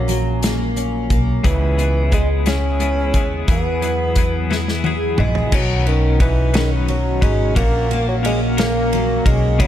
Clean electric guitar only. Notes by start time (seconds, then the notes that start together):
1.44 C#3 G#3 B3 E4 G#4
1.61 B3 E4 G#4
1.77 G#3 B3 E4 G#4
2.12 G#3 B3 E4 G#4
2.46 C#3 G#3 B3 E4 G#4
2.63 B3 E4 G#4
2.80 G#3 B3 E4 G#4
3.14 G#3 B3 E4 G#4
3.48 E3 F#3 B3 E4 G#4
3.64 B3 E4 G#4
3.81 F#3 B3 E4 G#4
4.16 F#3 B3 E4 G#4
4.50 E3 F#3 B3 E4 G#4
4.66 B3 E4 G#4
4.84 F#3 B3 E4 G#4
5.18 F#3 B3 E4 G#4
5.52 B2 D#3 F#3 C#4 D#4 B4
6.20 F#3 C#4 D#4 B4
6.54 B2 D#3 F#3 C#4 D#4 B4
7.21 F#3 C#4 D#4 B4
7.55 A#3 C#4 F#4 A#4
8.23 A#3 C#4 F#4 A#4
8.57 A#3 C#4 F#4 A#4
9.26 C#4 F#4 A#4
9.58 C#3 G#3 B3 E4 G#4